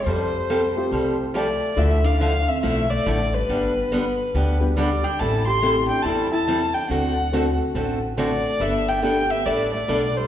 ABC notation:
X:1
M:4/4
L:1/8
Q:"Swing" 1/4=140
K:Ddor
V:1 name="Fiddle"
c4- c z d2 | e f f e e d2 B- | B4- B z d g | a c'2 g a a2 g |
^f3 z3 d2 | e g g e d d2 c |]
V:2 name="Upright piano"
z3 [A,CFG]3 z2 | [A,DEF]4- [A,DEF] z3 | z4 z [G,B,DG] z2 | z2 [A,CEG]3 z3 |
z2 [A,CD^F]3 z3 | z2 [A,B,DG]3 z3 |]
V:3 name="Hollow-body jazz guitar"
G,4- G, z A,2 | A, D D C A, A,2 G,- | G,4- G, z G, D | E G2 D E E2 D |
D3 z3 A,2 | B, D D B, A, A,2 G, |]
V:4 name="Steel-string acoustic guitar"
[F,G,CGA] z [F,G,CGA] z [F,G,CGA] z [F,G,CGA] z | [D,F,A,E] z [D,F,A,E] z [D,F,A,E] z [D,F,A,E] z | [D,G,B,DG] z [D,G,B,DG] z [D,G,B,DG] z [D,G,B,DG] z | [E,G,CEA] z [E,G,CEA] z [E,G,CEA] z [E,G,CEA] z |
[D,A,C^FA] z [D,A,CFA] z [D,A,CFA] z [D,A,CFA] z | [G,B,DA] z [G,B,DA] z [G,B,DA] z [G,B,DA] z |]
V:5 name="Upright bass" clef=bass
F,,4 C,,4 | D,,4 B,,,2 A,,,2 | G,,,4 D,,4 | A,,,4 E,,4 |
D,,4 A,,,4 | G,,,4 A,,,2 B,,,2 |]